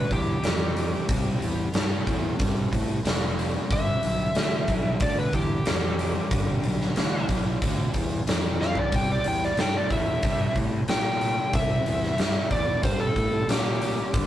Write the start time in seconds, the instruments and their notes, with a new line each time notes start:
Already playing: overdriven electric guitar G2 D3, electric slide guitar B4
0.11 fingered electric bass E2, electric slide guitar G4, kick, open hi-hat
0.42 fingered electric bass F2, overdriven electric guitar G2 E3, snare, open hi-hat
0.76 overdriven electric guitar G2 E3, open hi-hat
1.08 fingered electric bass C2, overdriven electric guitar C3 G3, kick, open hi-hat
1.41 fingered electric bass E2, open hi-hat
1.74 fingered electric bass G2, overdriven electric guitar C3 A3, snare, open hi-hat
2.06 fingered electric bass E2, overdriven electric guitar C3 A3, kick, open hi-hat
2.39 fingered electric bass G2, overdriven electric guitar C3 G3, kick, open hi-hat
2.73 fingered electric bass A2, kick, open hi-hat
3.04 fingered electric bass F1, overdriven electric guitar C3 A3, snare, open hi-hat
3.37 overdriven electric guitar C3 A3, open hi-hat
3.70 fingered electric bass G1, overdriven electric guitar G2 D3, electric slide guitar E5, kick, open hi-hat
4.03 fingered electric bass B1, open hi-hat
4.34 fingered electric bass D2, overdriven electric guitar G2 E3, snare, open hi-hat
4.67 fingered electric bass B1, overdriven electric guitar G2 E3, kick, open hi-hat
5.00 fingered electric bass D2, overdriven electric guitar G2 D3, electric slide guitar D5, kick, open hi-hat
5.18 electric slide guitar B4
5.33 fingered electric bass E2, electric slide guitar G4, kick, open hi-hat
5.65 fingered electric bass F2, overdriven electric guitar G2 E3, snare, open hi-hat
5.97 overdriven electric guitar G2 E3, open hi-hat
6.30 fingered electric bass G1, overdriven electric guitar G2 D3, kick, open hi-hat
6.64 fingered electric bass B1, open hi-hat
6.81 snare
6.96 fingered electric bass D2, overdriven electric guitar G2 E3, snare, open hi-hat
7.28 fingered electric bass B1, overdriven electric guitar G2 E3, kick, open hi-hat
7.62 fingered electric bass D2, overdriven electric guitar G2 D3, kick, open hi-hat
7.94 fingered electric bass E2, kick, open hi-hat
8.27 fingered electric bass F2, overdriven electric guitar G2 E3, snare, open hi-hat
8.59 overdriven electric guitar G2 E3, electric slide guitar F5, snare
8.75 electric slide guitar D5, floor tom
8.91 fingered electric bass C2, overdriven electric guitar C3 G3, kick, open hi-hat
8.95 electric slide guitar G5
9.12 electric slide guitar D5
9.24 fingered electric bass E2, electric slide guitar G5, open hi-hat
9.43 electric slide guitar D5, snare
9.57 fingered electric bass G2, overdriven electric guitar C3 A3, electric slide guitar G5, snare, open hi-hat
9.77 electric slide guitar D5
9.90 fingered electric bass E2, overdriven electric guitar C3 A3, electric slide guitar E5, kick, open hi-hat
10.22 fingered electric bass G2, overdriven electric guitar C3 G3, kick, open hi-hat
10.56 fingered electric bass A2, kick, open hi-hat
10.88 fingered electric bass A#2, overdriven electric guitar C3 A3, electric slide guitar G5, snare, open hi-hat
11.20 overdriven electric guitar C3 A3, open hi-hat
11.53 fingered electric bass C2, overdriven electric guitar C3 G3, electric slide guitar E5, kick, open hi-hat
11.85 fingered electric bass E2, open hi-hat
12.04 snare
12.18 fingered electric bass G2, overdriven electric guitar C3 A3, snare, open hi-hat
12.51 fingered electric bass E2, overdriven electric guitar C3 A3, electric slide guitar D5, kick, open hi-hat
12.83 fingered electric bass G2, overdriven electric guitar C3 G3, electric slide guitar C5, kick, open hi-hat
13.00 electric slide guitar A4
13.16 fingered electric bass A2, kick, open hi-hat
13.47 fingered electric bass A#2, overdriven electric guitar C3 A3, electric slide guitar G4, snare, open hi-hat
13.81 overdriven electric guitar C3 A3, open hi-hat
14.13 fingered electric bass G1, overdriven electric guitar G2 D3, tonewheel organ B3 D4 F4 A4, kick, open hi-hat